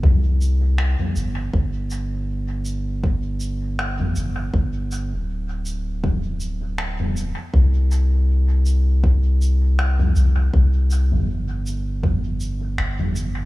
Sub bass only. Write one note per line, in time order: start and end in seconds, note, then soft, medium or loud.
0.03 0.95 C2 medium
1.16 1.50 G1 loud
1.54 4.13 G1 loud
4.16 4.50 G1 medium
4.54 5.13 G1 loud
5.12 7.33 D1 loud
7.54 10.13 C2 loud
10.16 10.49 C2 medium
10.54 11.13 C2 loud
11.12 12.78 G1 loud
12.79 13.45 G1 loud